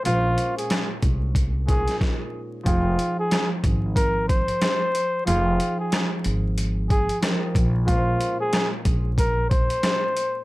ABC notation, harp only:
X:1
M:4/4
L:1/8
Q:"Swing 16ths" 1/4=92
K:Fm
V:1 name="Harp"
[B,,A,CDc]4- [B,,A,CDc] [B,,A,DE]3 | [F,EAg]8 | [F,EAg]6 [F,EGB] z | [B,,A,Dc]8 |]